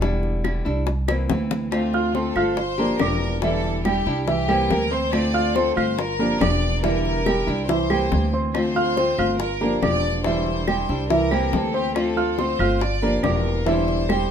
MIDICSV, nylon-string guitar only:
0, 0, Header, 1, 3, 480
1, 0, Start_track
1, 0, Tempo, 426439
1, 19, Time_signature, 4, 2, 24, 8
1, 16106, End_track
2, 0, Start_track
2, 0, Title_t, "Nylon-string guitar"
2, 0, Program_c, 0, 24
2, 7, Note_on_c, 0, 50, 66
2, 12, Note_on_c, 0, 55, 85
2, 17, Note_on_c, 0, 62, 74
2, 28, Note_on_c, 0, 64, 87
2, 477, Note_off_c, 0, 50, 0
2, 485, Note_off_c, 0, 55, 0
2, 488, Note_off_c, 0, 62, 0
2, 491, Note_on_c, 0, 50, 58
2, 494, Note_off_c, 0, 64, 0
2, 501, Note_on_c, 0, 55, 55
2, 507, Note_on_c, 0, 62, 60
2, 512, Note_on_c, 0, 64, 60
2, 716, Note_off_c, 0, 64, 0
2, 725, Note_off_c, 0, 50, 0
2, 725, Note_off_c, 0, 62, 0
2, 730, Note_off_c, 0, 55, 0
2, 730, Note_on_c, 0, 64, 66
2, 739, Note_on_c, 0, 62, 67
2, 748, Note_on_c, 0, 55, 64
2, 964, Note_off_c, 0, 64, 0
2, 969, Note_off_c, 0, 62, 0
2, 973, Note_off_c, 0, 55, 0
2, 1216, Note_on_c, 0, 64, 66
2, 1219, Note_on_c, 0, 60, 64
2, 1226, Note_on_c, 0, 58, 61
2, 1235, Note_on_c, 0, 52, 53
2, 1442, Note_off_c, 0, 52, 0
2, 1447, Note_off_c, 0, 64, 0
2, 1449, Note_off_c, 0, 60, 0
2, 1452, Note_off_c, 0, 58, 0
2, 1456, Note_on_c, 0, 52, 46
2, 1468, Note_on_c, 0, 58, 48
2, 1472, Note_on_c, 0, 60, 49
2, 1477, Note_on_c, 0, 64, 54
2, 1920, Note_off_c, 0, 52, 0
2, 1924, Note_on_c, 0, 50, 64
2, 1925, Note_off_c, 0, 60, 0
2, 1930, Note_off_c, 0, 58, 0
2, 1934, Note_on_c, 0, 57, 76
2, 1937, Note_off_c, 0, 64, 0
2, 1938, Note_on_c, 0, 60, 74
2, 1943, Note_on_c, 0, 65, 75
2, 2395, Note_off_c, 0, 50, 0
2, 2402, Note_off_c, 0, 57, 0
2, 2408, Note_off_c, 0, 60, 0
2, 2409, Note_on_c, 0, 50, 48
2, 2410, Note_off_c, 0, 65, 0
2, 2415, Note_on_c, 0, 57, 60
2, 2422, Note_on_c, 0, 60, 61
2, 2425, Note_on_c, 0, 65, 58
2, 2641, Note_off_c, 0, 65, 0
2, 2643, Note_off_c, 0, 50, 0
2, 2646, Note_off_c, 0, 57, 0
2, 2649, Note_off_c, 0, 60, 0
2, 2655, Note_on_c, 0, 65, 66
2, 2664, Note_on_c, 0, 60, 60
2, 2676, Note_on_c, 0, 57, 56
2, 2886, Note_off_c, 0, 65, 0
2, 2891, Note_off_c, 0, 60, 0
2, 2892, Note_off_c, 0, 57, 0
2, 3127, Note_on_c, 0, 67, 75
2, 3134, Note_on_c, 0, 62, 64
2, 3141, Note_on_c, 0, 58, 56
2, 3143, Note_on_c, 0, 53, 61
2, 3356, Note_off_c, 0, 53, 0
2, 3362, Note_off_c, 0, 67, 0
2, 3363, Note_off_c, 0, 58, 0
2, 3366, Note_off_c, 0, 62, 0
2, 3369, Note_on_c, 0, 53, 46
2, 3376, Note_on_c, 0, 58, 48
2, 3385, Note_on_c, 0, 62, 46
2, 3389, Note_on_c, 0, 67, 56
2, 3843, Note_off_c, 0, 53, 0
2, 3846, Note_off_c, 0, 58, 0
2, 3850, Note_off_c, 0, 62, 0
2, 3852, Note_off_c, 0, 67, 0
2, 3854, Note_on_c, 0, 50, 72
2, 3860, Note_on_c, 0, 55, 70
2, 3867, Note_on_c, 0, 62, 68
2, 3869, Note_on_c, 0, 64, 79
2, 4318, Note_off_c, 0, 50, 0
2, 4328, Note_off_c, 0, 55, 0
2, 4332, Note_off_c, 0, 62, 0
2, 4332, Note_on_c, 0, 50, 52
2, 4333, Note_off_c, 0, 64, 0
2, 4341, Note_on_c, 0, 55, 52
2, 4343, Note_on_c, 0, 62, 58
2, 4349, Note_on_c, 0, 64, 67
2, 4563, Note_off_c, 0, 64, 0
2, 4564, Note_off_c, 0, 50, 0
2, 4569, Note_off_c, 0, 55, 0
2, 4570, Note_off_c, 0, 62, 0
2, 4576, Note_on_c, 0, 64, 76
2, 4589, Note_on_c, 0, 62, 72
2, 4598, Note_on_c, 0, 55, 63
2, 4806, Note_off_c, 0, 64, 0
2, 4813, Note_off_c, 0, 62, 0
2, 4817, Note_off_c, 0, 55, 0
2, 5055, Note_on_c, 0, 64, 66
2, 5066, Note_on_c, 0, 60, 67
2, 5069, Note_on_c, 0, 58, 67
2, 5079, Note_on_c, 0, 52, 59
2, 5283, Note_off_c, 0, 52, 0
2, 5285, Note_off_c, 0, 64, 0
2, 5288, Note_off_c, 0, 58, 0
2, 5291, Note_off_c, 0, 60, 0
2, 5296, Note_on_c, 0, 52, 50
2, 5302, Note_on_c, 0, 58, 55
2, 5312, Note_on_c, 0, 60, 54
2, 5312, Note_on_c, 0, 64, 52
2, 5764, Note_off_c, 0, 52, 0
2, 5766, Note_off_c, 0, 58, 0
2, 5769, Note_off_c, 0, 60, 0
2, 5769, Note_on_c, 0, 50, 73
2, 5771, Note_on_c, 0, 57, 81
2, 5774, Note_off_c, 0, 64, 0
2, 5782, Note_on_c, 0, 60, 81
2, 5783, Note_on_c, 0, 65, 87
2, 6234, Note_off_c, 0, 50, 0
2, 6243, Note_off_c, 0, 57, 0
2, 6247, Note_on_c, 0, 50, 56
2, 6249, Note_off_c, 0, 60, 0
2, 6249, Note_off_c, 0, 65, 0
2, 6256, Note_on_c, 0, 57, 54
2, 6263, Note_on_c, 0, 60, 58
2, 6268, Note_on_c, 0, 65, 59
2, 6464, Note_off_c, 0, 65, 0
2, 6478, Note_on_c, 0, 65, 70
2, 6481, Note_off_c, 0, 50, 0
2, 6481, Note_off_c, 0, 60, 0
2, 6483, Note_off_c, 0, 57, 0
2, 6494, Note_on_c, 0, 60, 60
2, 6497, Note_on_c, 0, 57, 61
2, 6717, Note_off_c, 0, 65, 0
2, 6725, Note_off_c, 0, 60, 0
2, 6726, Note_off_c, 0, 57, 0
2, 6975, Note_on_c, 0, 67, 70
2, 6980, Note_on_c, 0, 62, 66
2, 6984, Note_on_c, 0, 58, 63
2, 6989, Note_on_c, 0, 53, 57
2, 7195, Note_off_c, 0, 53, 0
2, 7203, Note_off_c, 0, 58, 0
2, 7205, Note_off_c, 0, 67, 0
2, 7208, Note_off_c, 0, 62, 0
2, 7209, Note_on_c, 0, 53, 50
2, 7216, Note_on_c, 0, 58, 48
2, 7219, Note_on_c, 0, 62, 46
2, 7224, Note_on_c, 0, 67, 54
2, 7679, Note_off_c, 0, 53, 0
2, 7683, Note_off_c, 0, 62, 0
2, 7683, Note_on_c, 0, 50, 73
2, 7686, Note_off_c, 0, 58, 0
2, 7689, Note_off_c, 0, 67, 0
2, 7690, Note_on_c, 0, 55, 77
2, 7696, Note_on_c, 0, 62, 73
2, 7701, Note_on_c, 0, 64, 72
2, 8153, Note_off_c, 0, 50, 0
2, 8163, Note_off_c, 0, 55, 0
2, 8166, Note_off_c, 0, 62, 0
2, 8167, Note_on_c, 0, 50, 51
2, 8168, Note_off_c, 0, 64, 0
2, 8177, Note_on_c, 0, 55, 59
2, 8179, Note_on_c, 0, 62, 53
2, 8186, Note_on_c, 0, 64, 62
2, 8393, Note_off_c, 0, 64, 0
2, 8401, Note_off_c, 0, 50, 0
2, 8406, Note_off_c, 0, 55, 0
2, 8407, Note_off_c, 0, 62, 0
2, 8407, Note_on_c, 0, 64, 67
2, 8421, Note_on_c, 0, 62, 64
2, 8423, Note_on_c, 0, 55, 62
2, 8641, Note_off_c, 0, 64, 0
2, 8648, Note_off_c, 0, 62, 0
2, 8649, Note_off_c, 0, 55, 0
2, 8890, Note_on_c, 0, 64, 65
2, 8894, Note_on_c, 0, 60, 59
2, 8904, Note_on_c, 0, 52, 60
2, 8905, Note_on_c, 0, 58, 60
2, 9121, Note_off_c, 0, 52, 0
2, 9123, Note_off_c, 0, 64, 0
2, 9125, Note_off_c, 0, 60, 0
2, 9131, Note_off_c, 0, 58, 0
2, 9134, Note_on_c, 0, 52, 47
2, 9142, Note_on_c, 0, 58, 48
2, 9149, Note_on_c, 0, 60, 51
2, 9153, Note_on_c, 0, 64, 44
2, 9605, Note_off_c, 0, 52, 0
2, 9609, Note_off_c, 0, 58, 0
2, 9613, Note_off_c, 0, 60, 0
2, 9614, Note_off_c, 0, 64, 0
2, 9621, Note_on_c, 0, 50, 69
2, 9621, Note_on_c, 0, 57, 71
2, 9631, Note_on_c, 0, 60, 82
2, 9636, Note_on_c, 0, 65, 85
2, 10083, Note_off_c, 0, 50, 0
2, 10089, Note_off_c, 0, 57, 0
2, 10094, Note_off_c, 0, 60, 0
2, 10096, Note_off_c, 0, 65, 0
2, 10096, Note_on_c, 0, 50, 54
2, 10106, Note_on_c, 0, 57, 58
2, 10112, Note_on_c, 0, 60, 56
2, 10116, Note_on_c, 0, 65, 60
2, 10323, Note_off_c, 0, 65, 0
2, 10326, Note_off_c, 0, 50, 0
2, 10331, Note_off_c, 0, 57, 0
2, 10331, Note_off_c, 0, 60, 0
2, 10336, Note_on_c, 0, 65, 80
2, 10345, Note_on_c, 0, 60, 63
2, 10354, Note_on_c, 0, 57, 60
2, 10566, Note_off_c, 0, 65, 0
2, 10571, Note_off_c, 0, 60, 0
2, 10575, Note_off_c, 0, 57, 0
2, 10816, Note_on_c, 0, 67, 65
2, 10825, Note_on_c, 0, 62, 69
2, 10832, Note_on_c, 0, 53, 58
2, 10832, Note_on_c, 0, 58, 56
2, 11039, Note_off_c, 0, 53, 0
2, 11046, Note_off_c, 0, 67, 0
2, 11047, Note_off_c, 0, 58, 0
2, 11051, Note_off_c, 0, 62, 0
2, 11053, Note_on_c, 0, 53, 49
2, 11060, Note_on_c, 0, 58, 53
2, 11064, Note_on_c, 0, 62, 50
2, 11068, Note_on_c, 0, 67, 61
2, 11525, Note_off_c, 0, 53, 0
2, 11529, Note_off_c, 0, 58, 0
2, 11530, Note_off_c, 0, 62, 0
2, 11532, Note_off_c, 0, 67, 0
2, 11538, Note_on_c, 0, 50, 75
2, 11541, Note_on_c, 0, 55, 68
2, 11548, Note_on_c, 0, 62, 70
2, 11550, Note_on_c, 0, 64, 80
2, 12000, Note_off_c, 0, 50, 0
2, 12006, Note_off_c, 0, 55, 0
2, 12013, Note_off_c, 0, 62, 0
2, 12014, Note_off_c, 0, 64, 0
2, 12014, Note_on_c, 0, 50, 54
2, 12019, Note_on_c, 0, 55, 50
2, 12026, Note_on_c, 0, 62, 56
2, 12034, Note_on_c, 0, 64, 66
2, 12246, Note_off_c, 0, 50, 0
2, 12246, Note_off_c, 0, 64, 0
2, 12248, Note_off_c, 0, 55, 0
2, 12252, Note_off_c, 0, 62, 0
2, 12259, Note_on_c, 0, 64, 69
2, 12267, Note_on_c, 0, 62, 69
2, 12275, Note_on_c, 0, 55, 64
2, 12489, Note_off_c, 0, 64, 0
2, 12492, Note_off_c, 0, 62, 0
2, 12496, Note_off_c, 0, 55, 0
2, 12733, Note_on_c, 0, 64, 72
2, 12737, Note_on_c, 0, 60, 67
2, 12744, Note_on_c, 0, 58, 63
2, 12748, Note_on_c, 0, 52, 61
2, 12965, Note_off_c, 0, 52, 0
2, 12966, Note_off_c, 0, 64, 0
2, 12967, Note_off_c, 0, 60, 0
2, 12971, Note_off_c, 0, 58, 0
2, 12978, Note_on_c, 0, 52, 50
2, 12984, Note_on_c, 0, 58, 54
2, 12992, Note_on_c, 0, 60, 59
2, 12997, Note_on_c, 0, 64, 56
2, 13449, Note_off_c, 0, 52, 0
2, 13451, Note_off_c, 0, 58, 0
2, 13456, Note_off_c, 0, 60, 0
2, 13457, Note_on_c, 0, 50, 72
2, 13458, Note_off_c, 0, 64, 0
2, 13465, Note_on_c, 0, 57, 78
2, 13470, Note_on_c, 0, 60, 81
2, 13472, Note_on_c, 0, 65, 89
2, 13922, Note_off_c, 0, 50, 0
2, 13928, Note_off_c, 0, 57, 0
2, 13935, Note_off_c, 0, 60, 0
2, 13935, Note_on_c, 0, 50, 57
2, 13936, Note_off_c, 0, 65, 0
2, 13941, Note_on_c, 0, 57, 54
2, 13949, Note_on_c, 0, 60, 55
2, 13952, Note_on_c, 0, 65, 66
2, 14168, Note_off_c, 0, 50, 0
2, 14171, Note_off_c, 0, 57, 0
2, 14173, Note_off_c, 0, 65, 0
2, 14174, Note_off_c, 0, 60, 0
2, 14187, Note_on_c, 0, 65, 74
2, 14199, Note_on_c, 0, 60, 63
2, 14202, Note_on_c, 0, 57, 61
2, 14414, Note_off_c, 0, 65, 0
2, 14420, Note_off_c, 0, 60, 0
2, 14421, Note_off_c, 0, 57, 0
2, 14658, Note_on_c, 0, 67, 71
2, 14662, Note_on_c, 0, 62, 63
2, 14671, Note_on_c, 0, 58, 65
2, 14676, Note_on_c, 0, 53, 61
2, 14886, Note_off_c, 0, 53, 0
2, 14890, Note_off_c, 0, 67, 0
2, 14892, Note_off_c, 0, 62, 0
2, 14896, Note_off_c, 0, 58, 0
2, 14900, Note_on_c, 0, 53, 51
2, 14911, Note_on_c, 0, 58, 47
2, 14913, Note_on_c, 0, 62, 52
2, 14920, Note_on_c, 0, 67, 58
2, 15371, Note_off_c, 0, 53, 0
2, 15374, Note_off_c, 0, 62, 0
2, 15377, Note_off_c, 0, 58, 0
2, 15378, Note_on_c, 0, 50, 74
2, 15381, Note_off_c, 0, 67, 0
2, 15385, Note_on_c, 0, 55, 70
2, 15388, Note_on_c, 0, 62, 77
2, 15397, Note_on_c, 0, 64, 80
2, 15844, Note_off_c, 0, 50, 0
2, 15854, Note_off_c, 0, 55, 0
2, 15855, Note_off_c, 0, 62, 0
2, 15857, Note_on_c, 0, 50, 58
2, 15860, Note_off_c, 0, 64, 0
2, 15867, Note_on_c, 0, 55, 59
2, 15873, Note_on_c, 0, 62, 55
2, 15881, Note_on_c, 0, 64, 59
2, 16087, Note_off_c, 0, 64, 0
2, 16090, Note_off_c, 0, 50, 0
2, 16095, Note_off_c, 0, 55, 0
2, 16098, Note_off_c, 0, 62, 0
2, 16106, End_track
3, 0, Start_track
3, 0, Title_t, "Muted nylon-string guitar strokes"
3, 980, Note_on_c, 9, 29, 64
3, 1093, Note_off_c, 9, 29, 0
3, 2891, Note_on_c, 9, 29, 57
3, 3004, Note_off_c, 9, 29, 0
3, 4822, Note_on_c, 9, 29, 61
3, 4935, Note_off_c, 9, 29, 0
3, 6729, Note_on_c, 9, 29, 71
3, 6842, Note_off_c, 9, 29, 0
3, 8644, Note_on_c, 9, 29, 61
3, 8757, Note_off_c, 9, 29, 0
3, 10579, Note_on_c, 9, 29, 69
3, 10692, Note_off_c, 9, 29, 0
3, 12494, Note_on_c, 9, 29, 66
3, 12607, Note_off_c, 9, 29, 0
3, 14427, Note_on_c, 9, 29, 70
3, 14539, Note_off_c, 9, 29, 0
3, 16106, End_track
0, 0, End_of_file